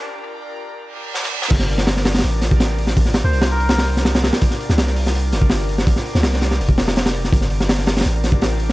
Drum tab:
CC |--------------------------------|x-------------------------------|--------------------------------|--------------------------------|
HH |--------------------------------|o---o---o---o-ooo---o---o---o---|o---o---o-o---o-o-o-o---o-o-o-o-|o---o---o---o---o---o---o---o---|
SD |------------------------o-o---o-|--o---o-o-o-o-oo----o---o-----o-|--o-o-----o-----o-o---o-o-o-o-o-|--o---o-o-o---o-----o---o-----o-|
BD |--------------------------------|o---------------------o---------|o-------------------------------|o---------------------o---------|

CC |--------------------------------|--------------------------------|
HH |o---o---o---o---o---o-o-o-o-o---|o---o---o---o-ooo---o---o---o---|
SD |--o---o-o-o-o-o-----o-o-o-o---o-|--o---o-o-o-o-oo----o---o-----o-|
BD |o-----------------o-------------|o---------------------o---------|